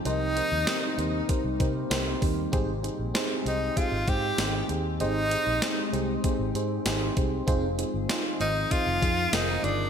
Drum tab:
HH |xxxxxxxo|xxxxxxxx|xxxxxxxx|xxxxxxxx|
TB |--x---x-|--x---x-|--x---x-|--x---x-|
SD |--o---o-|--o---o-|--o---o-|--o---o-|
BD |----oo-o|o---oo--|----o--o|o---oo--|